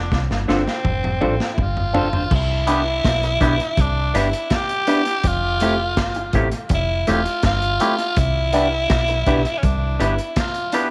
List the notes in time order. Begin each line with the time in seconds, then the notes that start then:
Already playing: D4
0.12 C2, kick, snare
0.31 G1, snare
0.48 G1 C4 D4 F4 A4 C5, snare
0.68 snare
0.85 F1, kick, mid tom
1.04 mid tom
1.20 A1 C4 D4 F4 A4 C5, mid tom
1.40 snare
1.53 E4
1.58 G1 F4, kick, floor tom
1.77 floor tom
1.93 C4 D4 F4 A4 C5, floor tom
2.13 D4 F4 C5, floor tom
2.31 C2 E4, kick, crash
2.67 B3 D4 E4 G4 B4, closed hi-hat
3.05 B1, kick, snare, closed hi-hat
3.23 muted clean electric guitar stroke, closed hi-hat
3.40 B1 B3 D4 E4 G4 B4, kick, closed hi-hat
3.60 closed hi-hat
3.77 C2 D4, kick, closed hi-hat
4.14 G1 B3 D4 E4 G4 B4, closed hi-hat
4.33 closed hi-hat
4.50 kick, snare, closed hi-hat
4.55 G4
4.69 closed hi-hat
4.87 B3 D4 E4 G4 B4, closed hi-hat
5.05 E4 G4, closed hi-hat
5.23 F1 F4, kick, closed hi-hat
5.60 A3 C4 E4 G4, closed hi-hat
5.97 G1, kick, snare, closed hi-hat
6.15 muted clean electric guitar stroke, closed hi-hat
6.33 A1 A3 C4 E4 G4, kick, closed hi-hat
6.52 closed hi-hat
6.69 F1, kick, closed hi-hat
6.74 E4
7.07 E1 A3 C4 E4 F4 G4, closed hi-hat
7.26 closed hi-hat
7.43 G1 F4, kick, snare, closed hi-hat
7.62 closed hi-hat
7.80 A3 C4 E4 G4, closed hi-hat
7.98 E4 G4, closed hi-hat
8.16 C2 E4, kick, closed hi-hat
8.53 B3 D4 E4 G4 B4, closed hi-hat
8.90 B1, kick, snare, closed hi-hat
9.08 muted clean electric guitar stroke, closed hi-hat
9.26 B1 B3 D4 E4 G4 B4, kick, closed hi-hat
9.45 closed hi-hat
9.58 C#4
9.63 C2 D4, kick, closed hi-hat
9.99 G1 B3 D4 E4 G4 B4, closed hi-hat
10.18 closed hi-hat
10.36 F4, kick, snare, closed hi-hat
10.54 closed hi-hat
10.72 B3 D4 E4 G4 B4, closed hi-hat